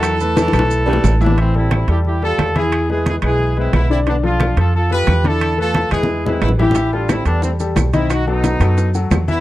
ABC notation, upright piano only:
X:1
M:4/4
L:1/8
Q:1/4=178
K:Am
V:1 name="Upright piano"
[^F,^Fe] [A,AB]2 [A,AB]2 [A,AB]2 [E,Ee] | [E,Ee] [G,GA]2 [G,GA]2 [G,GA]2 [E,Ee]- | [E,Ee] [^G,^GB]2 [G,GB]2 [G,GB]2 [D,Dd] | [D,Dd] [F,FA]2 [F,FA]2 [F,FA]2 [D,Dd]- |
[D,Dd] [A,AB]2 [^G,^GB]2 [G,GB]2 [E,Ee] | [E,Ee] [G,GA]2 [G,GA]2 [G,GA]2 [^D,^D^d]- | [^D,^D^d] [^F,^FA]2 [F,FA]2 [F,FA]2 [E,Ee] |]